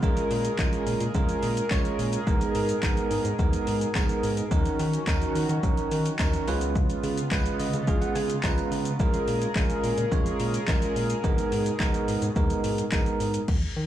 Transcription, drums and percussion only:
0.03 kick, shaker
0.17 closed hi-hat, shaker
0.31 open hi-hat, shaker
0.45 closed hi-hat, shaker
0.59 kick, clap, tambourine, shaker
0.73 closed hi-hat, shaker
0.87 open hi-hat, shaker
1.00 closed hi-hat, shaker
1.14 kick, shaker
1.29 closed hi-hat, shaker
1.43 open hi-hat, shaker
1.57 closed hi-hat, shaker
1.71 kick, clap, tambourine, shaker
1.85 closed hi-hat, shaker
1.99 open hi-hat, shaker
2.13 closed hi-hat, shaker
2.27 kick, shaker
2.41 closed hi-hat, shaker
2.55 open hi-hat, shaker
2.69 closed hi-hat, shaker
2.83 kick, clap, tambourine, shaker
2.97 closed hi-hat, shaker
3.11 open hi-hat, shaker
3.25 closed hi-hat, shaker
3.39 kick, shaker
3.53 closed hi-hat, shaker
3.67 open hi-hat, shaker
3.81 closed hi-hat, shaker
3.95 kick, clap, tambourine, shaker
4.09 closed hi-hat, shaker
4.23 open hi-hat, shaker
4.37 closed hi-hat, shaker
4.51 kick, shaker
4.66 closed hi-hat, shaker
4.79 open hi-hat, shaker
4.93 closed hi-hat, shaker
5.07 kick, clap, tambourine, shaker
5.22 closed hi-hat, shaker
5.35 open hi-hat, shaker
5.49 closed hi-hat, shaker
5.63 kick, shaker
5.77 closed hi-hat, shaker
5.91 open hi-hat, shaker
6.06 closed hi-hat, shaker
6.19 kick, clap, tambourine, shaker
6.33 closed hi-hat, shaker
6.48 open hi-hat, shaker
6.61 closed hi-hat, shaker
6.75 kick, shaker
6.90 closed hi-hat, shaker
7.03 open hi-hat, shaker
7.18 closed hi-hat, shaker
7.31 kick, clap, tambourine, shaker
7.46 closed hi-hat, shaker
7.60 open hi-hat, shaker
7.73 closed hi-hat, shaker
7.88 kick, shaker
8.02 closed hi-hat, shaker
8.16 open hi-hat, shaker
8.30 closed hi-hat, shaker
8.43 kick, clap, tambourine, shaker
8.58 closed hi-hat, shaker
8.72 open hi-hat, shaker
8.85 closed hi-hat, shaker
9.00 kick, shaker
9.14 closed hi-hat, shaker
9.28 open hi-hat, shaker
9.42 closed hi-hat, shaker
9.55 kick, clap, tambourine, shaker
9.70 closed hi-hat, shaker
9.84 open hi-hat, shaker
9.98 closed hi-hat, shaker
10.12 kick, shaker
10.26 closed hi-hat, shaker
10.40 open hi-hat, shaker
10.54 closed hi-hat, shaker
10.68 kick, clap, tambourine, shaker
10.82 closed hi-hat, shaker
10.96 open hi-hat, shaker
11.10 closed hi-hat, shaker
11.24 kick, shaker
11.38 closed hi-hat, shaker
11.52 open hi-hat, shaker
11.66 closed hi-hat, shaker
11.80 kick, clap, tambourine, shaker
11.94 closed hi-hat, shaker
12.08 open hi-hat, shaker
12.22 closed hi-hat, shaker
12.36 kick, shaker
12.50 closed hi-hat, shaker
12.64 open hi-hat, shaker
12.78 closed hi-hat, shaker
12.92 kick, clap, tambourine, shaker
13.06 closed hi-hat, shaker
13.20 open hi-hat, shaker
13.34 closed hi-hat, shaker
13.48 kick, crash

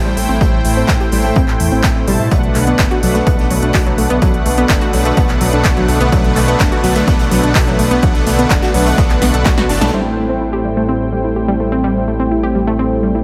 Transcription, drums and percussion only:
0.17 closed hi-hat, open hi-hat
0.41 kick, closed hi-hat
0.65 closed hi-hat, open hi-hat
0.88 kick, snare, clap, closed hi-hat
1.00 closed hi-hat
1.11 open hi-hat
1.36 kick, closed hi-hat
1.48 clap
1.60 closed hi-hat, open hi-hat
1.83 kick, snare, clap, closed hi-hat
2.08 closed hi-hat, open hi-hat
2.31 kick, closed hi-hat
2.43 closed hi-hat
2.55 clap, closed hi-hat, open hi-hat
2.67 closed hi-hat
2.79 kick, snare, clap, closed hi-hat
2.91 closed hi-hat
3.03 closed hi-hat, open hi-hat
3.15 snare, closed hi-hat
3.26 kick, closed hi-hat
3.39 snare, closed hi-hat
3.50 closed hi-hat, open hi-hat
3.63 closed hi-hat
3.74 kick, snare, clap, closed hi-hat, open hi-hat
3.86 closed hi-hat
3.98 closed hi-hat, open hi-hat
4.10 closed hi-hat
4.22 kick, closed hi-hat
4.34 closed hi-hat
4.46 closed hi-hat, open hi-hat
4.58 closed hi-hat
4.69 kick, snare, clap, closed hi-hat
4.81 closed hi-hat
4.93 open hi-hat
5.05 closed hi-hat
5.17 kick, closed hi-hat
5.29 clap, closed hi-hat
5.41 closed hi-hat, open hi-hat
5.53 closed hi-hat
5.65 kick, snare, clap, closed hi-hat
5.77 closed hi-hat
5.88 closed hi-hat, open hi-hat
6.01 closed hi-hat
6.12 kick, closed hi-hat
6.24 closed hi-hat
6.36 clap, closed hi-hat, open hi-hat
6.48 closed hi-hat
6.60 kick, snare, clap, closed hi-hat
6.72 closed hi-hat
6.83 snare, closed hi-hat, open hi-hat
6.96 snare, closed hi-hat
7.07 kick, snare, closed hi-hat
7.19 snare, closed hi-hat
7.31 snare, closed hi-hat, open hi-hat
7.43 closed hi-hat
7.55 kick, clap, closed hi-hat, open hi-hat
7.67 snare, closed hi-hat
7.79 closed hi-hat, open hi-hat
7.91 snare, closed hi-hat
8.02 kick, closed hi-hat
8.15 snare, closed hi-hat
8.27 snare, closed hi-hat, open hi-hat
8.39 closed hi-hat
8.50 kick, clap, closed hi-hat
8.62 snare, closed hi-hat
8.74 open hi-hat
8.86 closed hi-hat, open hi-hat
8.98 kick, snare, closed hi-hat
9.10 clap, closed hi-hat
9.22 snare, closed hi-hat, open hi-hat
9.34 closed hi-hat
9.45 kick, snare, clap, closed hi-hat
9.58 snare, closed hi-hat
9.69 snare, closed hi-hat, open hi-hat
9.75 snare, closed hi-hat
9.81 snare, closed hi-hat
9.87 snare, closed hi-hat

